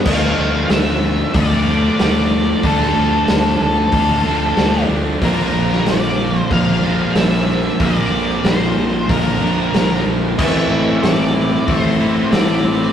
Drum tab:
CC |x---------------|----------------|----------------|----------------|
HH |----o---o---o---|o---o---o---o---|o---o---o---o---|o---o---o---o---|
SD |----o-------o---|-o--o-------o---|---oo-------o---|----o-------o---|
BD |o-------o-------|o-------o-------|o-------o-------|o-------o-------|

CC |x---------------|
HH |----o---o---o---|
SD |----o-------o---|
BD |o-------o-------|